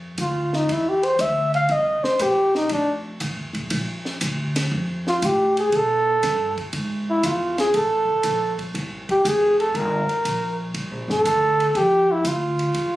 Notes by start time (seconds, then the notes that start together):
Already playing: F2
0.18 D2 F4, kick, hi-hat pedal, ride
0.53 D#4, snare
0.69 E2 E4, kick, ride
0.88 G4
1.03 C5, ride
1.19 D2 E5, kick, hi-hat pedal, ride
1.54 F5, ride
1.69 C2 D#5, kick, ride
2.03 C5, muted upright bass stroke, snare
2.19 A#1 G4, kick, hi-hat pedal, ride
2.55 D#4, snare
2.69 F1 D4, kick, ride
3.20 A1, kick, hi-hat pedal, ride
3.36 F1
3.53 D#1, ride
3.70 A#1, kick, ride
4.05 snare
4.21 D2, kick, hi-hat pedal, ride
4.56 snare, ride
4.71 F2, kick
5.07 F4, snare
5.22 A2 G4, kick, hi-hat pedal, ride
5.57 G#4, ride
5.72 B2 A4, kick, ride
6.23 G2, kick, snare, hi-hat pedal, ride
6.58 muted upright bass stroke, kick, ride
6.73 G#2, kick, ride
7.10 E4
7.23 E2 F4, kick, hi-hat pedal, ride
7.58 G#4, snare, ride
7.74 A1 A4, kick, ride
8.09 muted upright bass stroke
8.23 A#1, kick, hi-hat pedal, ride
8.59 kick, ride
8.74 C2, kick, ride
9.09 G4, kick, ride
9.25 F1 G#4, kick, hi-hat pedal, ride
9.60 A4, ride
9.74 G1 A#4, kick, ride
10.09 muted upright bass stroke, ride
10.25 A#1, kick, hi-hat pedal, ride
10.74 C2, kick, ride
10.91 A#1
11.08 G1 A4, snare
11.25 D2, kick, hi-hat pedal, ride
11.60 ride
11.75 F2 G4, kick, ride
12.12 E4
12.25 D2 F4, kick, hi-hat pedal, ride
12.59 ride
12.74 E2, kick, ride